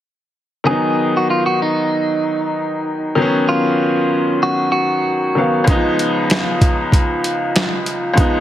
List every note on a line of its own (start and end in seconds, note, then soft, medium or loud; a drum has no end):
0.64 3.12 D#3 medium
0.64 3.13 F#3 medium
0.64 1.13 G#4 medium
0.68 3.14 B3 medium
0.68 3.15 D#4 medium
1.17 1.29 F#4 medium
1.30 1.46 F4 medium
1.46 1.59 F#4 medium
1.62 3.14 D#4 medium
3.15 5.31 D#3 medium
3.15 5.32 F#3 medium
3.20 5.33 B3 medium
3.20 5.34 C#4 medium
3.49 4.39 F4 medium
4.43 4.71 F#4 medium
4.72 5.63 F#4 medium
5.35 5.64 D#3 medium
5.35 5.68 F#3 soft
5.35 5.68 B3 soft
5.35 5.69 F5 medium
5.64 8.12 C#2 medium
5.64 5.74 D#3 medium
5.64 8.13 G#3 medium
5.64 kick loud
5.64 closed hi-hat medium
5.69 8.14 F3 medium
5.69 8.14 B3 medium
5.69 8.15 D#4 medium
5.99 closed hi-hat medium
6.30 snare loud
6.30 closed hi-hat medium
6.61 kick medium
6.61 closed hi-hat medium
6.92 kick medium
6.92 closed hi-hat medium
7.24 closed hi-hat medium
7.56 snare loud
7.56 closed hi-hat loud
7.86 closed hi-hat medium
8.13 8.40 C#2 medium
8.13 8.40 F3 medium
8.13 8.40 G#3 medium
8.18 8.40 B3 medium
8.18 8.40 D#4 medium
8.18 kick loud
8.18 closed hi-hat medium